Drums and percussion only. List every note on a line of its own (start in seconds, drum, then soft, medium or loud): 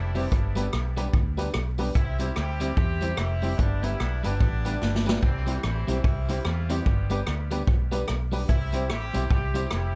0.15 open hi-hat soft
0.15 tambourine medium
0.32 kick loud
0.32 hi-hat pedal medium
0.55 closed hi-hat medium
0.55 tambourine medium
0.73 cross-stick loud
0.97 closed hi-hat medium
0.97 tambourine medium
1.14 kick loud
1.37 closed hi-hat medium
1.37 tambourine medium
1.54 cross-stick loud
1.78 open hi-hat soft
1.78 tambourine medium
1.95 kick loud
1.95 hi-hat pedal medium
2.18 closed hi-hat medium
2.18 tambourine medium
2.36 cross-stick loud
2.60 closed hi-hat medium
2.60 tambourine medium
2.77 kick loud
3.01 closed hi-hat medium
3.01 tambourine medium
3.17 cross-stick loud
3.42 open hi-hat soft
3.42 tambourine medium
3.59 kick loud
3.59 hi-hat pedal medium
3.83 closed hi-hat medium
3.83 tambourine medium
4.00 cross-stick loud
4.24 closed hi-hat medium
4.24 tambourine medium
4.40 kick loud
4.65 closed hi-hat medium
4.65 tambourine medium
4.81 snare medium
4.95 snare medium
5.06 snare loud
5.06 tambourine medium
5.23 kick loud
5.46 closed hi-hat medium
5.46 tambourine medium
5.63 cross-stick loud
5.88 closed hi-hat medium
5.88 tambourine medium
6.04 kick loud
6.29 closed hi-hat medium
6.29 tambourine medium
6.45 cross-stick loud
6.70 closed hi-hat medium
6.70 tambourine medium
6.86 kick loud
7.10 closed hi-hat medium
7.10 tambourine medium
7.27 cross-stick loud
7.51 closed hi-hat medium
7.51 tambourine medium
7.67 kick loud
7.92 closed hi-hat medium
7.92 tambourine medium
8.08 cross-stick loud
8.32 open hi-hat soft
8.32 tambourine medium
8.49 kick loud
8.49 hi-hat pedal medium
8.72 closed hi-hat medium
8.72 tambourine medium
8.90 cross-stick loud
9.14 closed hi-hat medium
9.14 tambourine medium
9.31 kick loud
9.55 closed hi-hat medium
9.55 tambourine medium
9.71 cross-stick loud